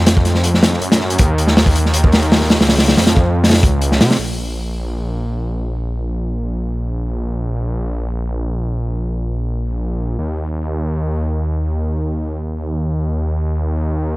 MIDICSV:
0, 0, Header, 1, 3, 480
1, 0, Start_track
1, 0, Tempo, 375000
1, 1522, Time_signature, 4, 2, 24, 8
1, 18134, End_track
2, 0, Start_track
2, 0, Title_t, "Detuned saw bass"
2, 0, Program_c, 0, 39
2, 0, Note_on_c, 0, 41, 83
2, 795, Note_off_c, 0, 41, 0
2, 802, Note_on_c, 0, 41, 93
2, 1020, Note_off_c, 0, 41, 0
2, 1043, Note_on_c, 0, 42, 91
2, 1504, Note_off_c, 0, 42, 0
2, 1529, Note_on_c, 0, 39, 100
2, 2467, Note_off_c, 0, 39, 0
2, 2481, Note_on_c, 0, 39, 90
2, 3307, Note_off_c, 0, 39, 0
2, 3330, Note_on_c, 0, 37, 90
2, 3789, Note_off_c, 0, 37, 0
2, 3809, Note_on_c, 0, 41, 80
2, 4648, Note_on_c, 0, 37, 94
2, 4668, Note_off_c, 0, 41, 0
2, 5121, Note_on_c, 0, 48, 82
2, 5141, Note_off_c, 0, 37, 0
2, 5339, Note_off_c, 0, 48, 0
2, 5361, Note_on_c, 0, 34, 86
2, 13019, Note_off_c, 0, 34, 0
2, 13039, Note_on_c, 0, 39, 84
2, 18134, Note_off_c, 0, 39, 0
2, 18134, End_track
3, 0, Start_track
3, 0, Title_t, "Drums"
3, 81, Note_on_c, 9, 42, 97
3, 87, Note_on_c, 9, 38, 127
3, 209, Note_off_c, 9, 42, 0
3, 215, Note_off_c, 9, 38, 0
3, 215, Note_on_c, 9, 36, 94
3, 319, Note_on_c, 9, 42, 64
3, 327, Note_on_c, 9, 38, 43
3, 343, Note_off_c, 9, 36, 0
3, 444, Note_off_c, 9, 38, 0
3, 444, Note_on_c, 9, 38, 43
3, 447, Note_off_c, 9, 42, 0
3, 558, Note_on_c, 9, 42, 90
3, 572, Note_off_c, 9, 38, 0
3, 686, Note_off_c, 9, 42, 0
3, 693, Note_on_c, 9, 38, 53
3, 802, Note_off_c, 9, 38, 0
3, 802, Note_on_c, 9, 38, 111
3, 808, Note_on_c, 9, 42, 78
3, 930, Note_off_c, 9, 38, 0
3, 934, Note_on_c, 9, 38, 44
3, 936, Note_off_c, 9, 42, 0
3, 1043, Note_on_c, 9, 42, 68
3, 1062, Note_off_c, 9, 38, 0
3, 1171, Note_off_c, 9, 42, 0
3, 1174, Note_on_c, 9, 38, 102
3, 1175, Note_on_c, 9, 42, 72
3, 1279, Note_off_c, 9, 38, 0
3, 1279, Note_on_c, 9, 38, 39
3, 1303, Note_off_c, 9, 42, 0
3, 1407, Note_off_c, 9, 38, 0
3, 1410, Note_on_c, 9, 42, 59
3, 1515, Note_off_c, 9, 42, 0
3, 1515, Note_on_c, 9, 42, 97
3, 1528, Note_on_c, 9, 36, 121
3, 1643, Note_off_c, 9, 42, 0
3, 1656, Note_off_c, 9, 36, 0
3, 1769, Note_on_c, 9, 42, 68
3, 1887, Note_on_c, 9, 38, 63
3, 1897, Note_off_c, 9, 42, 0
3, 2008, Note_on_c, 9, 46, 81
3, 2009, Note_off_c, 9, 38, 0
3, 2009, Note_on_c, 9, 38, 127
3, 2127, Note_on_c, 9, 36, 92
3, 2136, Note_off_c, 9, 46, 0
3, 2137, Note_off_c, 9, 38, 0
3, 2246, Note_on_c, 9, 42, 70
3, 2255, Note_off_c, 9, 36, 0
3, 2374, Note_off_c, 9, 42, 0
3, 2376, Note_on_c, 9, 38, 41
3, 2478, Note_on_c, 9, 42, 99
3, 2504, Note_off_c, 9, 38, 0
3, 2606, Note_off_c, 9, 42, 0
3, 2610, Note_on_c, 9, 36, 102
3, 2717, Note_on_c, 9, 46, 81
3, 2731, Note_on_c, 9, 38, 118
3, 2738, Note_off_c, 9, 36, 0
3, 2845, Note_off_c, 9, 46, 0
3, 2849, Note_on_c, 9, 42, 47
3, 2859, Note_off_c, 9, 38, 0
3, 2962, Note_on_c, 9, 46, 70
3, 2968, Note_on_c, 9, 38, 109
3, 2977, Note_off_c, 9, 42, 0
3, 3084, Note_off_c, 9, 38, 0
3, 3084, Note_on_c, 9, 38, 45
3, 3090, Note_off_c, 9, 46, 0
3, 3195, Note_on_c, 9, 46, 72
3, 3204, Note_off_c, 9, 38, 0
3, 3204, Note_on_c, 9, 38, 102
3, 3323, Note_off_c, 9, 46, 0
3, 3331, Note_on_c, 9, 46, 77
3, 3332, Note_off_c, 9, 38, 0
3, 3337, Note_on_c, 9, 38, 107
3, 3441, Note_off_c, 9, 38, 0
3, 3441, Note_on_c, 9, 38, 108
3, 3449, Note_off_c, 9, 46, 0
3, 3449, Note_on_c, 9, 46, 69
3, 3565, Note_off_c, 9, 38, 0
3, 3565, Note_off_c, 9, 46, 0
3, 3565, Note_on_c, 9, 38, 97
3, 3565, Note_on_c, 9, 46, 76
3, 3691, Note_off_c, 9, 38, 0
3, 3691, Note_on_c, 9, 38, 102
3, 3693, Note_off_c, 9, 46, 0
3, 3697, Note_on_c, 9, 46, 74
3, 3806, Note_off_c, 9, 38, 0
3, 3806, Note_on_c, 9, 38, 100
3, 3808, Note_off_c, 9, 46, 0
3, 3808, Note_on_c, 9, 46, 67
3, 3927, Note_off_c, 9, 38, 0
3, 3927, Note_on_c, 9, 38, 116
3, 3930, Note_on_c, 9, 42, 83
3, 3936, Note_off_c, 9, 46, 0
3, 4052, Note_on_c, 9, 36, 100
3, 4055, Note_off_c, 9, 38, 0
3, 4058, Note_off_c, 9, 42, 0
3, 4180, Note_off_c, 9, 36, 0
3, 4400, Note_on_c, 9, 38, 86
3, 4406, Note_on_c, 9, 46, 60
3, 4470, Note_off_c, 9, 46, 0
3, 4470, Note_on_c, 9, 46, 65
3, 4475, Note_off_c, 9, 38, 0
3, 4475, Note_on_c, 9, 38, 89
3, 4520, Note_off_c, 9, 38, 0
3, 4520, Note_on_c, 9, 38, 108
3, 4534, Note_off_c, 9, 46, 0
3, 4534, Note_on_c, 9, 46, 69
3, 4643, Note_on_c, 9, 42, 76
3, 4648, Note_off_c, 9, 38, 0
3, 4648, Note_on_c, 9, 36, 99
3, 4662, Note_off_c, 9, 46, 0
3, 4771, Note_off_c, 9, 42, 0
3, 4776, Note_off_c, 9, 36, 0
3, 4882, Note_on_c, 9, 42, 62
3, 5010, Note_off_c, 9, 42, 0
3, 5015, Note_on_c, 9, 38, 51
3, 5124, Note_on_c, 9, 46, 65
3, 5129, Note_off_c, 9, 38, 0
3, 5129, Note_on_c, 9, 38, 103
3, 5243, Note_off_c, 9, 46, 0
3, 5243, Note_on_c, 9, 46, 66
3, 5256, Note_off_c, 9, 38, 0
3, 5256, Note_on_c, 9, 38, 108
3, 5371, Note_off_c, 9, 46, 0
3, 5384, Note_off_c, 9, 38, 0
3, 18134, End_track
0, 0, End_of_file